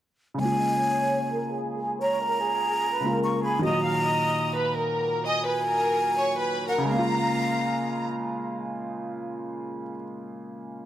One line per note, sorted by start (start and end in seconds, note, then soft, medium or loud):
0.34 2.97 C#3 medium
0.34 2.98 G#3 medium
0.40 3.00 A#3 medium
0.40 0.58 C#5 loud
0.40 1.57 G#5 loud
0.40 0.58 C#6 medium
0.45 3.02 F4 medium
0.60 0.78 D#5 medium
0.80 1.29 C#5 medium
0.80 1.29 C#6 medium
1.32 1.50 A#4 medium
1.32 1.50 A#5 medium
1.52 1.99 G#4 medium
1.52 1.99 G#5 medium
2.02 2.20 C#5 medium
2.02 3.20 A#5 loud
2.02 2.21 C#6 medium
2.22 2.40 A#4 medium
2.22 2.41 A#5 medium
2.43 2.91 G#4 medium
2.43 2.91 G#5 medium
2.94 3.12 B4 medium
2.94 3.12 B5 medium
3.01 3.63 C#3 medium
3.01 3.64 G#3 soft
3.01 3.64 A#3 soft
3.06 3.65 F4 medium
3.14 3.42 A#4 medium
3.14 3.42 A#5 medium
3.24 3.43 C#6 medium
3.44 3.62 G#4 medium
3.44 3.62 G#5 medium
3.44 3.63 B5 medium
3.59 6.82 D#3 medium
3.59 6.84 F#3 medium
3.64 6.85 A#2 medium
3.64 3.82 D#5 loud
3.64 4.82 A#5 loud
3.64 3.83 D#6 medium
3.69 6.87 F#4 medium
3.84 4.03 F5 medium
3.84 4.03 F6 medium
4.05 4.53 D#5 medium
4.05 4.53 D#6 medium
4.56 4.74 B4 medium
4.56 4.75 B5 medium
4.76 5.23 A#4 medium
4.76 5.24 A#5 medium
5.26 5.44 D#5 loud
5.26 6.64 G#5 loud
5.26 5.45 D#6 medium
5.46 5.65 B4 medium
5.46 5.65 B5 medium
5.67 6.15 A#4 medium
5.67 6.15 A#5 medium
6.18 6.36 C#5 medium
6.18 6.37 C#6 medium
6.38 6.66 B4 medium
6.38 6.67 B5 medium
6.68 6.86 A#4 medium
6.68 6.87 F#5 medium
6.68 6.87 A#5 medium
6.78 9.82 C#3 medium
6.85 9.89 G#3 medium
6.85 8.06 F5 medium
6.85 8.06 A#5 medium
6.92 9.96 A#3 medium
6.99 10.03 F4 loud